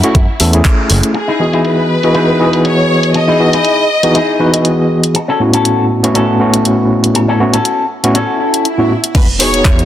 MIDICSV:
0, 0, Header, 1, 9, 480
1, 0, Start_track
1, 0, Key_signature, 4, "major"
1, 0, Tempo, 500000
1, 1104, Time_signature, 4, 2, 24, 8
1, 9456, End_track
2, 0, Start_track
2, 0, Title_t, "Violin section"
2, 0, Program_c, 0, 48
2, 0, Note_on_c, 0, 64, 95
2, 628, Note_off_c, 0, 64, 0
2, 1114, Note_on_c, 0, 68, 75
2, 1556, Note_off_c, 0, 68, 0
2, 1593, Note_on_c, 0, 71, 85
2, 2510, Note_off_c, 0, 71, 0
2, 2546, Note_on_c, 0, 73, 92
2, 2992, Note_off_c, 0, 73, 0
2, 3027, Note_on_c, 0, 75, 102
2, 4706, Note_off_c, 0, 75, 0
2, 8791, Note_on_c, 0, 71, 96
2, 8897, Note_off_c, 0, 71, 0
2, 9032, Note_on_c, 0, 73, 117
2, 9456, Note_off_c, 0, 73, 0
2, 9456, End_track
3, 0, Start_track
3, 0, Title_t, "Clean electric guitar"
3, 0, Program_c, 1, 27
3, 1225, Note_on_c, 1, 63, 75
3, 1233, Note_on_c, 1, 64, 65
3, 1239, Note_on_c, 1, 68, 81
3, 1339, Note_off_c, 1, 63, 0
3, 1343, Note_off_c, 1, 64, 0
3, 1346, Note_off_c, 1, 68, 0
3, 1469, Note_on_c, 1, 63, 76
3, 1475, Note_on_c, 1, 64, 66
3, 1485, Note_on_c, 1, 68, 83
3, 1767, Note_off_c, 1, 63, 0
3, 1770, Note_off_c, 1, 64, 0
3, 1774, Note_off_c, 1, 68, 0
3, 2054, Note_on_c, 1, 63, 76
3, 2062, Note_on_c, 1, 64, 73
3, 2068, Note_on_c, 1, 68, 88
3, 2539, Note_off_c, 1, 63, 0
3, 2543, Note_off_c, 1, 64, 0
3, 2546, Note_off_c, 1, 68, 0
3, 3145, Note_on_c, 1, 63, 78
3, 3154, Note_on_c, 1, 64, 71
3, 3162, Note_on_c, 1, 68, 84
3, 3259, Note_off_c, 1, 63, 0
3, 3264, Note_off_c, 1, 64, 0
3, 3268, Note_off_c, 1, 68, 0
3, 3390, Note_on_c, 1, 63, 78
3, 3396, Note_on_c, 1, 64, 71
3, 3405, Note_on_c, 1, 68, 86
3, 3687, Note_off_c, 1, 63, 0
3, 3690, Note_off_c, 1, 64, 0
3, 3695, Note_off_c, 1, 68, 0
3, 3978, Note_on_c, 1, 63, 77
3, 3987, Note_on_c, 1, 64, 70
3, 3996, Note_on_c, 1, 68, 85
3, 4461, Note_off_c, 1, 63, 0
3, 4465, Note_off_c, 1, 64, 0
3, 4470, Note_off_c, 1, 68, 0
3, 5070, Note_on_c, 1, 61, 74
3, 5078, Note_on_c, 1, 66, 73
3, 5085, Note_on_c, 1, 69, 90
3, 5182, Note_off_c, 1, 61, 0
3, 5186, Note_off_c, 1, 66, 0
3, 5189, Note_off_c, 1, 69, 0
3, 5308, Note_on_c, 1, 61, 81
3, 5316, Note_on_c, 1, 66, 70
3, 5322, Note_on_c, 1, 69, 88
3, 5606, Note_off_c, 1, 61, 0
3, 5610, Note_off_c, 1, 66, 0
3, 5613, Note_off_c, 1, 69, 0
3, 5893, Note_on_c, 1, 61, 80
3, 5901, Note_on_c, 1, 66, 76
3, 5909, Note_on_c, 1, 69, 86
3, 6379, Note_off_c, 1, 61, 0
3, 6383, Note_off_c, 1, 66, 0
3, 6387, Note_off_c, 1, 69, 0
3, 6991, Note_on_c, 1, 61, 78
3, 6998, Note_on_c, 1, 66, 78
3, 7005, Note_on_c, 1, 69, 90
3, 7102, Note_off_c, 1, 61, 0
3, 7105, Note_off_c, 1, 66, 0
3, 7109, Note_off_c, 1, 69, 0
3, 7227, Note_on_c, 1, 61, 83
3, 7233, Note_on_c, 1, 66, 76
3, 7240, Note_on_c, 1, 69, 91
3, 7526, Note_off_c, 1, 61, 0
3, 7529, Note_off_c, 1, 66, 0
3, 7532, Note_off_c, 1, 69, 0
3, 7814, Note_on_c, 1, 61, 82
3, 7822, Note_on_c, 1, 66, 77
3, 7830, Note_on_c, 1, 69, 87
3, 8299, Note_off_c, 1, 61, 0
3, 8303, Note_off_c, 1, 66, 0
3, 8307, Note_off_c, 1, 69, 0
3, 9456, End_track
4, 0, Start_track
4, 0, Title_t, "Tine electric piano"
4, 0, Program_c, 2, 4
4, 29, Note_on_c, 2, 57, 100
4, 34, Note_on_c, 2, 61, 92
4, 37, Note_on_c, 2, 64, 82
4, 39, Note_on_c, 2, 66, 106
4, 159, Note_off_c, 2, 57, 0
4, 161, Note_off_c, 2, 61, 0
4, 163, Note_off_c, 2, 64, 0
4, 164, Note_off_c, 2, 66, 0
4, 385, Note_on_c, 2, 57, 90
4, 387, Note_on_c, 2, 61, 80
4, 391, Note_on_c, 2, 64, 84
4, 393, Note_on_c, 2, 69, 99
4, 484, Note_off_c, 2, 57, 0
4, 485, Note_off_c, 2, 61, 0
4, 487, Note_off_c, 2, 64, 0
4, 488, Note_off_c, 2, 69, 0
4, 507, Note_on_c, 2, 57, 74
4, 517, Note_on_c, 2, 61, 69
4, 521, Note_on_c, 2, 64, 73
4, 527, Note_on_c, 2, 68, 84
4, 1087, Note_off_c, 2, 57, 0
4, 1092, Note_off_c, 2, 61, 0
4, 1094, Note_off_c, 2, 64, 0
4, 1097, Note_off_c, 2, 68, 0
4, 1339, Note_on_c, 2, 52, 69
4, 1342, Note_on_c, 2, 59, 64
4, 1349, Note_on_c, 2, 75, 62
4, 1351, Note_on_c, 2, 66, 60
4, 1357, Note_on_c, 2, 68, 75
4, 1921, Note_off_c, 2, 52, 0
4, 1922, Note_off_c, 2, 59, 0
4, 1926, Note_off_c, 2, 75, 0
4, 1927, Note_off_c, 2, 66, 0
4, 1930, Note_off_c, 2, 68, 0
4, 1954, Note_on_c, 2, 52, 79
4, 1957, Note_on_c, 2, 59, 72
4, 1960, Note_on_c, 2, 66, 76
4, 1961, Note_on_c, 2, 75, 71
4, 1962, Note_on_c, 2, 68, 84
4, 2278, Note_off_c, 2, 52, 0
4, 2279, Note_off_c, 2, 59, 0
4, 2281, Note_off_c, 2, 66, 0
4, 2281, Note_off_c, 2, 75, 0
4, 2282, Note_off_c, 2, 68, 0
4, 2297, Note_on_c, 2, 52, 73
4, 2302, Note_on_c, 2, 59, 68
4, 2308, Note_on_c, 2, 75, 65
4, 2312, Note_on_c, 2, 66, 69
4, 2318, Note_on_c, 2, 68, 80
4, 3235, Note_off_c, 2, 52, 0
4, 3237, Note_off_c, 2, 59, 0
4, 3240, Note_off_c, 2, 75, 0
4, 3242, Note_off_c, 2, 66, 0
4, 3245, Note_off_c, 2, 68, 0
4, 3260, Note_on_c, 2, 52, 76
4, 3262, Note_on_c, 2, 59, 66
4, 3264, Note_on_c, 2, 63, 69
4, 3267, Note_on_c, 2, 66, 65
4, 3270, Note_on_c, 2, 68, 80
4, 3408, Note_off_c, 2, 52, 0
4, 3409, Note_off_c, 2, 59, 0
4, 3410, Note_off_c, 2, 63, 0
4, 3412, Note_off_c, 2, 66, 0
4, 3413, Note_off_c, 2, 68, 0
4, 3871, Note_on_c, 2, 52, 83
4, 3872, Note_on_c, 2, 59, 81
4, 3876, Note_on_c, 2, 63, 77
4, 3876, Note_on_c, 2, 66, 77
4, 3877, Note_on_c, 2, 68, 91
4, 4000, Note_off_c, 2, 52, 0
4, 4000, Note_off_c, 2, 59, 0
4, 4002, Note_off_c, 2, 63, 0
4, 4002, Note_off_c, 2, 66, 0
4, 4003, Note_off_c, 2, 68, 0
4, 4218, Note_on_c, 2, 52, 81
4, 4221, Note_on_c, 2, 59, 71
4, 4223, Note_on_c, 2, 63, 72
4, 4227, Note_on_c, 2, 66, 75
4, 4228, Note_on_c, 2, 71, 90
4, 4321, Note_off_c, 2, 52, 0
4, 4322, Note_off_c, 2, 59, 0
4, 4323, Note_off_c, 2, 63, 0
4, 4325, Note_off_c, 2, 66, 0
4, 4326, Note_off_c, 2, 71, 0
4, 4345, Note_on_c, 2, 52, 69
4, 4348, Note_on_c, 2, 59, 60
4, 4355, Note_on_c, 2, 75, 63
4, 4359, Note_on_c, 2, 66, 62
4, 4363, Note_on_c, 2, 68, 79
4, 4926, Note_off_c, 2, 52, 0
4, 4928, Note_off_c, 2, 59, 0
4, 4931, Note_off_c, 2, 75, 0
4, 4933, Note_off_c, 2, 66, 0
4, 4935, Note_off_c, 2, 68, 0
4, 5181, Note_on_c, 2, 45, 71
4, 5184, Note_on_c, 2, 59, 65
4, 5188, Note_on_c, 2, 61, 63
4, 5196, Note_on_c, 2, 64, 63
4, 5198, Note_on_c, 2, 66, 74
4, 5762, Note_off_c, 2, 45, 0
4, 5764, Note_off_c, 2, 59, 0
4, 5766, Note_off_c, 2, 61, 0
4, 5770, Note_off_c, 2, 64, 0
4, 5771, Note_off_c, 2, 66, 0
4, 5790, Note_on_c, 2, 45, 81
4, 5791, Note_on_c, 2, 59, 78
4, 5795, Note_on_c, 2, 61, 76
4, 5798, Note_on_c, 2, 64, 77
4, 5801, Note_on_c, 2, 66, 88
4, 6115, Note_off_c, 2, 45, 0
4, 6116, Note_off_c, 2, 59, 0
4, 6118, Note_off_c, 2, 61, 0
4, 6119, Note_off_c, 2, 64, 0
4, 6121, Note_off_c, 2, 66, 0
4, 6137, Note_on_c, 2, 45, 82
4, 6139, Note_on_c, 2, 59, 71
4, 6143, Note_on_c, 2, 61, 72
4, 6150, Note_on_c, 2, 64, 75
4, 6154, Note_on_c, 2, 66, 87
4, 7074, Note_off_c, 2, 45, 0
4, 7076, Note_off_c, 2, 59, 0
4, 7078, Note_off_c, 2, 61, 0
4, 7081, Note_off_c, 2, 64, 0
4, 7083, Note_off_c, 2, 66, 0
4, 7102, Note_on_c, 2, 45, 73
4, 7103, Note_on_c, 2, 59, 69
4, 7105, Note_on_c, 2, 61, 70
4, 7109, Note_on_c, 2, 64, 74
4, 7110, Note_on_c, 2, 66, 83
4, 7249, Note_off_c, 2, 45, 0
4, 7250, Note_off_c, 2, 59, 0
4, 7251, Note_off_c, 2, 61, 0
4, 7252, Note_off_c, 2, 64, 0
4, 7253, Note_off_c, 2, 66, 0
4, 7711, Note_on_c, 2, 45, 87
4, 7715, Note_on_c, 2, 59, 84
4, 7715, Note_on_c, 2, 61, 84
4, 7716, Note_on_c, 2, 64, 85
4, 7721, Note_on_c, 2, 66, 94
4, 7840, Note_off_c, 2, 45, 0
4, 7842, Note_off_c, 2, 59, 0
4, 7842, Note_off_c, 2, 61, 0
4, 7843, Note_off_c, 2, 64, 0
4, 7845, Note_off_c, 2, 66, 0
4, 8428, Note_on_c, 2, 45, 73
4, 8429, Note_on_c, 2, 59, 66
4, 8433, Note_on_c, 2, 61, 63
4, 8435, Note_on_c, 2, 64, 65
4, 8438, Note_on_c, 2, 66, 80
4, 8558, Note_off_c, 2, 45, 0
4, 8559, Note_off_c, 2, 59, 0
4, 8561, Note_off_c, 2, 61, 0
4, 8562, Note_off_c, 2, 64, 0
4, 8564, Note_off_c, 2, 66, 0
4, 9012, Note_on_c, 2, 59, 75
4, 9017, Note_on_c, 2, 63, 72
4, 9025, Note_on_c, 2, 66, 76
4, 9030, Note_on_c, 2, 68, 87
4, 9456, Note_off_c, 2, 59, 0
4, 9456, Note_off_c, 2, 63, 0
4, 9456, Note_off_c, 2, 66, 0
4, 9456, Note_off_c, 2, 68, 0
4, 9456, End_track
5, 0, Start_track
5, 0, Title_t, "Picked electric bass"
5, 0, Program_c, 3, 34
5, 142, Note_on_c, 3, 42, 93
5, 243, Note_off_c, 3, 42, 0
5, 387, Note_on_c, 3, 40, 87
5, 574, Note_off_c, 3, 40, 0
5, 867, Note_on_c, 3, 30, 93
5, 965, Note_off_c, 3, 30, 0
5, 8782, Note_on_c, 3, 40, 90
5, 8883, Note_off_c, 3, 40, 0
5, 9264, Note_on_c, 3, 40, 93
5, 9452, Note_off_c, 3, 40, 0
5, 9456, End_track
6, 0, Start_track
6, 0, Title_t, "Impact"
6, 0, Program_c, 4, 103
6, 8782, Note_on_c, 4, 60, 82
6, 9456, Note_off_c, 4, 60, 0
6, 9456, End_track
7, 0, Start_track
7, 0, Title_t, "Swell"
7, 0, Program_c, 5, 103
7, 7823, Note_on_c, 5, 60, 71
7, 8784, Note_off_c, 5, 60, 0
7, 9456, End_track
8, 0, Start_track
8, 0, Title_t, "Muted clean electric guitar strokes"
8, 1091, Note_on_c, 9, 29, 105
8, 1187, Note_off_c, 9, 29, 0
8, 3013, Note_on_c, 9, 29, 99
8, 3109, Note_off_c, 9, 29, 0
8, 4937, Note_on_c, 9, 29, 102
8, 5033, Note_off_c, 9, 29, 0
8, 6858, Note_on_c, 9, 29, 111
8, 6954, Note_off_c, 9, 29, 0
8, 9456, End_track
9, 0, Start_track
9, 0, Title_t, "Drums"
9, 33, Note_on_c, 9, 42, 63
9, 129, Note_off_c, 9, 42, 0
9, 143, Note_on_c, 9, 36, 112
9, 144, Note_on_c, 9, 42, 52
9, 239, Note_off_c, 9, 36, 0
9, 240, Note_off_c, 9, 42, 0
9, 382, Note_on_c, 9, 46, 103
9, 478, Note_off_c, 9, 46, 0
9, 511, Note_on_c, 9, 42, 70
9, 607, Note_off_c, 9, 42, 0
9, 620, Note_on_c, 9, 42, 56
9, 621, Note_on_c, 9, 39, 120
9, 622, Note_on_c, 9, 36, 101
9, 716, Note_off_c, 9, 42, 0
9, 717, Note_off_c, 9, 39, 0
9, 718, Note_off_c, 9, 36, 0
9, 860, Note_on_c, 9, 46, 92
9, 956, Note_off_c, 9, 46, 0
9, 992, Note_on_c, 9, 42, 66
9, 1088, Note_off_c, 9, 42, 0
9, 1099, Note_on_c, 9, 42, 46
9, 1195, Note_off_c, 9, 42, 0
9, 1472, Note_on_c, 9, 42, 60
9, 1568, Note_off_c, 9, 42, 0
9, 1580, Note_on_c, 9, 42, 46
9, 1676, Note_off_c, 9, 42, 0
9, 1952, Note_on_c, 9, 42, 57
9, 2048, Note_off_c, 9, 42, 0
9, 2059, Note_on_c, 9, 42, 47
9, 2155, Note_off_c, 9, 42, 0
9, 2431, Note_on_c, 9, 42, 58
9, 2527, Note_off_c, 9, 42, 0
9, 2543, Note_on_c, 9, 42, 46
9, 2639, Note_off_c, 9, 42, 0
9, 2911, Note_on_c, 9, 42, 54
9, 3007, Note_off_c, 9, 42, 0
9, 3019, Note_on_c, 9, 42, 48
9, 3115, Note_off_c, 9, 42, 0
9, 3392, Note_on_c, 9, 42, 60
9, 3488, Note_off_c, 9, 42, 0
9, 3500, Note_on_c, 9, 42, 47
9, 3596, Note_off_c, 9, 42, 0
9, 3871, Note_on_c, 9, 42, 56
9, 3967, Note_off_c, 9, 42, 0
9, 3984, Note_on_c, 9, 42, 47
9, 4080, Note_off_c, 9, 42, 0
9, 4355, Note_on_c, 9, 42, 61
9, 4451, Note_off_c, 9, 42, 0
9, 4463, Note_on_c, 9, 42, 45
9, 4559, Note_off_c, 9, 42, 0
9, 4834, Note_on_c, 9, 42, 52
9, 4930, Note_off_c, 9, 42, 0
9, 4942, Note_on_c, 9, 42, 45
9, 5038, Note_off_c, 9, 42, 0
9, 5314, Note_on_c, 9, 42, 58
9, 5410, Note_off_c, 9, 42, 0
9, 5426, Note_on_c, 9, 42, 45
9, 5522, Note_off_c, 9, 42, 0
9, 5797, Note_on_c, 9, 42, 55
9, 5893, Note_off_c, 9, 42, 0
9, 5905, Note_on_c, 9, 42, 46
9, 6001, Note_off_c, 9, 42, 0
9, 6274, Note_on_c, 9, 42, 58
9, 6370, Note_off_c, 9, 42, 0
9, 6386, Note_on_c, 9, 42, 44
9, 6482, Note_off_c, 9, 42, 0
9, 6756, Note_on_c, 9, 42, 53
9, 6852, Note_off_c, 9, 42, 0
9, 6865, Note_on_c, 9, 42, 43
9, 6961, Note_off_c, 9, 42, 0
9, 7234, Note_on_c, 9, 42, 59
9, 7330, Note_off_c, 9, 42, 0
9, 7345, Note_on_c, 9, 42, 45
9, 7441, Note_off_c, 9, 42, 0
9, 7716, Note_on_c, 9, 42, 53
9, 7812, Note_off_c, 9, 42, 0
9, 7824, Note_on_c, 9, 42, 45
9, 7920, Note_off_c, 9, 42, 0
9, 8197, Note_on_c, 9, 42, 54
9, 8293, Note_off_c, 9, 42, 0
9, 8306, Note_on_c, 9, 42, 47
9, 8402, Note_off_c, 9, 42, 0
9, 8675, Note_on_c, 9, 42, 50
9, 8771, Note_off_c, 9, 42, 0
9, 8782, Note_on_c, 9, 36, 121
9, 8783, Note_on_c, 9, 42, 82
9, 8783, Note_on_c, 9, 49, 103
9, 8878, Note_off_c, 9, 36, 0
9, 8879, Note_off_c, 9, 42, 0
9, 8879, Note_off_c, 9, 49, 0
9, 9022, Note_on_c, 9, 46, 110
9, 9118, Note_off_c, 9, 46, 0
9, 9156, Note_on_c, 9, 42, 57
9, 9252, Note_off_c, 9, 42, 0
9, 9263, Note_on_c, 9, 36, 113
9, 9264, Note_on_c, 9, 42, 82
9, 9266, Note_on_c, 9, 39, 116
9, 9359, Note_off_c, 9, 36, 0
9, 9360, Note_off_c, 9, 42, 0
9, 9362, Note_off_c, 9, 39, 0
9, 9398, Note_on_c, 9, 42, 40
9, 9456, Note_off_c, 9, 42, 0
9, 9456, End_track
0, 0, End_of_file